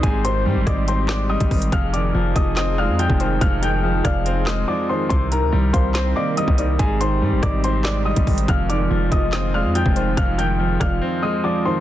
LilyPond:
<<
  \new Staff \with { instrumentName = "Upright piano" } { \time 4/4 \key f \dorian \tempo 4 = 142 <aes' aes''>8 <c'' c'''>4 <d'' d'''>8 <c'' c'''>8 <d'' d'''>8 <ees'' ees'''>4 | <f'' f'''>8 <d'' d'''>4 <ees'' ees'''>8 <ees'' ees'''>8 <f'' f'''>8 <g'' g'''>4 | <f'' f'''>8 <g'' g'''>4 <f'' f'''>4 <ees'' ees'''>8 <d'' d'''>8 <c'' c'''>8 | <c'' c'''>8 <bes' bes''>4 <c'' c'''>8 <c'' c'''>8 <d'' d'''>8 <ees'' ees'''>4 |
<aes' aes''>8 <c'' c'''>4 <d'' d'''>8 <c'' c'''>8 <d'' d'''>8 <ees'' ees'''>4 | <f'' f'''>8 <d'' d'''>4 <ees'' ees'''>8 <ees'' ees'''>8 <f'' f'''>8 <g'' g'''>4 | <f'' f'''>8 <g'' g'''>4 <f'' f'''>4 <ees'' ees'''>8 <d'' d'''>8 <c'' c'''>8 | }
  \new Staff \with { instrumentName = "Synth pluck" } { \time 4/4 \key f \dorian r4. ees''4 d''8 r4 | r4. ees''4 d''4 c''8 | r4. d''8 r2 | r4. f''4 ees''4 d''8 |
r4. ees''4 d''8 r4 | r4. ees''4 d''4 c''8 | r4. d''8 r2 | }
  \new Staff \with { instrumentName = "Analog synth pad" } { \time 4/4 \key f \dorian <c' g' c''>1 | <f ees' aes'>1~ | <f ees' aes'>1 | <ees c' bes'>1 |
<c c' g'>1 | <ees aes f'>1~ | <ees aes f'>1 | }
  \new Staff \with { instrumentName = "Grand piano" } { \clef bass \time 4/4 \key f \dorian aes,8 ees8 g4 c'8 aes8 g8 ees8 | f,8 ees8 f4 c'8 aes8 f8 ees8 | f,8 ees8 f4 c'8 aes8 f8 ees8 | c8 ees8 g4 c'8 bes8 g8 ees8 |
aes,8 ees8 g4 c'8 aes8 g8 ees8 | f,8 ees8 f4 c'8 aes8 f8 ees8 | f,8 ees8 f4 c'8 aes8 f8 ees8 | }
  \new Staff \with { instrumentName = "808-style bass" } { \clef bass \time 4/4 \key f \dorian aes,,4 aes,16 aes,,16 aes,,4.~ aes,,16 aes,,16 aes,,8 | f,,4 f,,8 f,,4~ f,,16 f,8 f,,8. | f,,4. f,,4. r4 | c,8. d,16 c,8 c,4 r8. c,8. |
aes,,4 aes,16 aes,,16 aes,,4.~ aes,,16 aes,,16 aes,,8 | f,,4 f,,8 f,,4~ f,,16 f,8 f,,8. | f,,4. f,,8 r2 | }
  \new DrumStaff \with { instrumentName = "Drums" } \drummode { \time 4/4 <hh bd>8 hh8 r8 <hh bd ss>8 hh8 <hc sn>8 r16 <hh bd>16 <hho bd>16 hh16 | <hh bd>8 hh8 r8 <hh bd>8 <hc hh sn>4 hh16 bd16 hh8 | <hh bd>8 hh8 r8 <hh bd ss>8 hh8 <hc sn>8 r4 | <hh bd>8 hh8 r8 <hh bd>8 <hc hh sn>4 hh16 bd16 hh8 |
<hh bd>8 hh8 r8 <hh bd ss>8 hh8 <hc sn>8 r16 <hh bd>16 <hho bd>16 hh16 | <hh bd>8 hh8 r8 <hh bd>8 <hc hh sn>4 hh16 bd16 hh8 | <hh bd>8 hh8 r8 <hh bd ss>8 r4 r4 | }
>>